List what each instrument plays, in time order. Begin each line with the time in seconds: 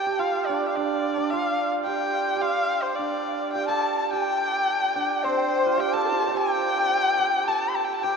Already playing: hammered dulcimer A4, erhu G5
0.06 hammered dulcimer G4
0.19 hammered dulcimer F4, erhu F5
0.46 hammered dulcimer D4, erhu D5
0.68 erhu F5
0.76 hammered dulcimer D4, erhu D5
1.17 hammered dulcimer D4
1.30 hammered dulcimer F4, erhu F5
1.85 hammered dulcimer G4, erhu G5
2.36 hammered dulcimer G4
2.41 hammered dulcimer F4, erhu F5
2.83 erhu C5
2.95 hammered dulcimer D4, erhu D5
3.52 hammered dulcimer G4, dizi G5, erhu G5
3.66 hammered dulcimer A4, dizi A5, erhu A5
4.03 erhu A5
4.11 hammered dulcimer G4, dizi G5, erhu G5
4.96 hammered dulcimer D4
5.23 hammered dulcimer C4, dizi C5, erhu C5
5.66 hammered dulcimer F4
5.78 hammered dulcimer G4, dizi G5, erhu G5
5.92 hammered dulcimer A4, dizi A5, erhu A5
6.05 dizi A4 C5
6.10 dizi D4
6.14 dizi F4
6.18 dizi G4
6.23 dizi A4 C5
6.28 hammered dulcimer A4, dizi D5
6.32 hammered dulcimer G4, dizi F5 G5
6.37 erhu G5
7.19 hammered dulcimer G4
7.48 hammered dulcimer A4, erhu A5, dizi A5
7.69 erhu C6
7.76 erhu A5
7.85 erhu G5
7.94 erhu A5
8.03 hammered dulcimer G4, erhu G5, dizi G5